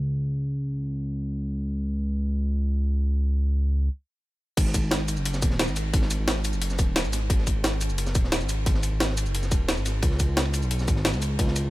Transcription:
0.00 3.89 C#2 medium
4.57 4.82 G#1 loud
4.57 kick loud
4.57 closed hi-hat loud
4.57 ride medium
4.57 crash loud
4.66 snare soft
4.74 kick medium
4.74 closed hi-hat medium
4.74 ride medium
4.74 shaker medium
4.83 5.18 G#1 medium
4.91 snare loud
4.91 closed hi-hat loud
4.91 ride medium
5.00 ride soft
5.08 closed hi-hat medium
5.08 ride medium
5.08 shaker medium
5.17 5.44 F#1 medium
5.17 shaker soft
5.25 closed hi-hat loud
5.25 ride medium
5.34 snare medium
5.34 shaker soft
5.42 5.70 D#1 loud
5.42 kick loud
5.42 closed hi-hat medium
5.42 ride medium
5.42 shaker medium
5.50 snare medium
5.59 snare loud
5.59 closed hi-hat loud
5.59 ride medium
5.67 5.92 G#1 medium
5.67 snare soft
5.67 shaker soft
5.76 closed hi-hat medium
5.76 ride medium
5.76 shaker medium
5.93 6.18 G#1 loud
5.93 kick loud
5.93 closed hi-hat loud
5.93 ride loud
6.02 snare medium
6.11 closed hi-hat medium
6.11 ride medium
6.11 shaker medium
6.19 6.55 G#1 medium
6.28 snare loud
6.28 closed hi-hat loud
6.28 ride medium
6.35 snare medium
6.45 closed hi-hat medium
6.45 ride medium
6.45 shaker medium
6.53 6.80 F#1 medium
6.53 shaker soft
6.61 closed hi-hat loud
6.61 ride medium
6.70 snare soft
6.70 shaker soft
6.79 7.06 D#1 loud
6.79 kick loud
6.79 closed hi-hat medium
6.79 ride medium
6.79 shaker medium
6.96 snare loud
6.96 closed hi-hat loud
6.96 ride medium
7.04 7.29 G#1 medium
7.04 snare soft
7.04 shaker soft
7.13 snare soft
7.13 closed hi-hat medium
7.13 ride medium
7.13 shaker medium
7.30 7.54 G#1 loud
7.30 kick loud
7.30 closed hi-hat loud
7.30 ride medium
7.38 snare soft
7.47 kick medium
7.47 closed hi-hat medium
7.47 ride medium
7.47 shaker medium
7.56 7.91 G#1 medium
7.64 snare loud
7.64 closed hi-hat loud
7.64 ride medium
7.73 ride soft
7.81 closed hi-hat medium
7.81 ride medium
7.81 shaker medium
7.90 8.17 F#1 medium
7.90 shaker soft
7.98 closed hi-hat medium
7.98 ride medium
8.06 snare medium
8.06 shaker soft
8.15 8.43 D#1 loud
8.15 kick loud
8.15 closed hi-hat medium
8.15 ride medium
8.15 shaker medium
8.24 snare soft
8.32 snare loud
8.32 closed hi-hat loud
8.32 ride medium
8.41 8.65 G#1 medium
8.41 snare soft
8.41 shaker soft
8.49 closed hi-hat medium
8.49 ride medium
8.49 shaker medium
8.66 8.91 G#1 loud
8.66 kick loud
8.66 closed hi-hat medium
8.66 ride medium
8.74 snare medium
8.83 closed hi-hat medium
8.83 ride medium
8.83 shaker medium
8.92 9.28 G#1 medium
9.00 snare loud
9.00 closed hi-hat loud
9.00 ride medium
9.09 snare medium
9.17 closed hi-hat medium
9.17 ride medium
9.17 shaker medium
9.26 9.53 F#1 medium
9.26 shaker soft
9.35 closed hi-hat medium
9.35 ride medium
9.43 snare soft
9.43 shaker soft
9.51 9.79 D#1 loud
9.51 kick loud
9.51 closed hi-hat medium
9.51 ride medium
9.51 shaker medium
9.68 snare loud
9.68 closed hi-hat medium
9.68 ride medium
9.77 10.01 G#1 loud
9.77 snare soft
9.77 shaker soft
9.86 snare soft
9.86 closed hi-hat medium
9.86 ride medium
9.86 shaker medium
10.02 10.27 C#2 loud
10.02 kick loud
10.02 closed hi-hat medium
10.02 ride medium
10.11 snare soft
10.20 kick medium
10.20 closed hi-hat medium
10.20 ride medium
10.20 shaker medium
10.28 10.64 C#2 medium
10.37 snare loud
10.37 closed hi-hat medium
10.37 ride medium
10.45 ride soft
10.54 closed hi-hat medium
10.54 ride medium
10.54 shaker medium
10.63 10.89 B1 medium
10.63 shaker soft
10.71 closed hi-hat medium
10.71 ride medium
10.79 snare medium
10.79 shaker soft
10.88 11.15 G#1 loud
10.88 kick loud
10.88 closed hi-hat medium
10.88 ride medium
10.88 shaker medium
10.96 snare soft
11.05 snare loud
11.05 closed hi-hat medium
11.05 ride medium
11.13 11.38 C#2 medium
11.13 snare soft
11.13 shaker soft
11.22 closed hi-hat medium
11.22 ride medium
11.22 shaker medium
11.39 11.63 C#2 loud
11.39 kick loud
11.39 closed hi-hat medium
11.39 ride medium
11.47 snare medium
11.56 closed hi-hat medium
11.56 ride medium
11.56 shaker medium
11.64 11.70 C#2 medium

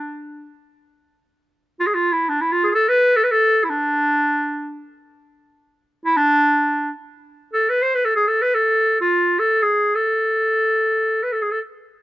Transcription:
0.00 0.53 D4 medium
1.80 1.88 F4 medium
1.87 1.96 G#4 medium
1.95 2.14 F4 medium
2.13 2.31 E4 medium
2.29 2.43 D4 medium
2.42 2.54 E4 medium
2.52 2.63 F4 medium
2.63 2.72 F4 medium
2.63 2.67 G#4 medium
2.70 2.74 G#4 medium
2.75 2.90 A4 medium
2.89 3.18 B4 medium
3.16 3.25 A4 medium
3.24 3.33 B4 medium
3.31 3.66 A4 loud
3.64 3.71 E4 medium
3.69 4.93 D4 medium
6.05 6.18 E4 medium
6.17 6.90 D4 medium
7.53 7.71 A4 medium
7.69 7.83 B4 medium
7.82 7.96 C5 medium
7.95 8.06 B4 medium
8.05 8.15 A4 medium
8.16 8.29 G#4 medium
8.28 8.43 A4 medium
8.42 8.56 B4 medium
8.54 9.00 A4 medium
9.01 9.41 F4 medium
9.39 9.64 A4 medium
9.62 9.97 G#4 medium
9.95 11.24 A4 medium
11.23 11.34 B4 medium
11.32 11.43 A4 medium
11.42 11.53 G#4 medium
11.51 11.60 A4 medium

